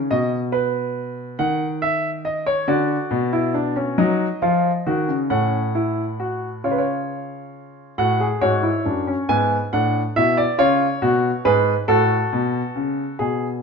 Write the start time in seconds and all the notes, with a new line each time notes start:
0.11 B2 D#5
0.52 B4
1.39 D#3 F#5
1.82 E5
2.25 D#5
2.46 C#5
2.68 D3 F#4 D5
3.11 B2
3.33 E4
3.54 D4
3.76 C#4
3.98 F#3 D#4 D#5
4.42 F3 F4
4.86 D#3 F#4
5.08 C#3
5.30 A2 C#4 F#5
5.75 E4
6.20 F#4
6.64 C#3 F4 C#5
6.71 B4
6.78 C#5
7.98 A2 F#4 F#5
8.20 G#4
8.41 G#2 F#4 C#5
8.63 E4
8.85 F#2 D4
9.07 C#4
9.29 G#2 B3 G#5
9.73 A2 D4 F#5
10.16 B2 E4 E5
10.37 D5
10.58 C#3 F4 C#5
11.02 B2 F#4
11.45 G#2 G#4 B4
11.88 A2 F#4 A4
12.33 B2
12.76 C#3
13.19 B2 G#4